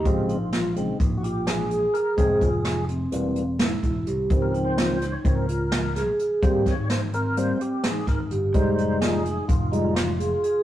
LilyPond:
<<
  \new Staff \with { instrumentName = "Vibraphone" } { \time 9/8 \key f \minor \tempo 4. = 85 g'8 ees'8 f'8 ees'4 f'4 aes'8 aes'8 | aes'8 f'4 c'8 c'4 e'8 e'8 g'8~ | g'8 ees'8 f'8 ees'4 f'4 aes'8 aes'8 | g'8 ees'4 c'8 c'4 ees'8 ees'8 g'8~ |
g'8 ees'8 f'8 ees'4 f'4 aes'8 aes'8 | }
  \new Staff \with { instrumentName = "Tonewheel organ" } { \time 9/8 \key f \minor f'4. r8. r32 ges'32 g'8 aes'4 bes'8 | aes'4. r2. | r16 bes'8 c''4 des''8 bes'4. r8. | c''8 des''8 c''8 bes'8 c''8 g'8 aes'8 bes'8 r8 |
c''4 aes'4 f'8 ees'8 f'4. | }
  \new Staff \with { instrumentName = "Tonewheel organ" } { \clef bass \time 9/8 \key f \minor <des aes c'>8 r4 <des aes c'>8 r2 r8 | <f aes c'>8 r4. <e g bes>8 r2 | <ees f c'>4. r8 <ees f c'>8 r2 | <g bes c'>8 r4. <g bes c'>8 r2 |
<g aes ees'>4. r4 <g aes>8 r4. | }
  \new Staff \with { instrumentName = "Picked electric bass" } { \clef bass \time 9/8 \key f \minor bes,,2 bes,,2 r8 | f,,8 f,,4. e,,4. e,,8 c,8 | des,2 des,2 r8 | aes,,8 aes,,2 r4 aes,,8 g,,8 |
f,,2 f,,2 r8 | }
  \new DrumStaff \with { instrumentName = "Drums" } \drummode { \time 9/8 <hh bd>8 hh8 <hh sn>8 hh8 <hh bd>8 hh8 <hh sn>8 hh8 hh8 | <hh bd>8 <hh bd>8 <hh sn>8 hh8 hh8 hh8 <hh sn>8 <hh bd>8 hh8 | <hh bd>8 hh8 <hh sn>8 <hh sn>8 <hh bd>8 hh8 <hh sn>8 <hh sn>8 hh8 | <hh bd>8 <hh bd sn>8 <hh sn>8 hh8 hh8 hh8 <hh sn>8 <hh bd sn>8 hh8 |
<hh bd>8 hh8 <hh sn>8 hh8 <hh bd>8 hh8 <hh sn>8 hh8 hh8 | }
>>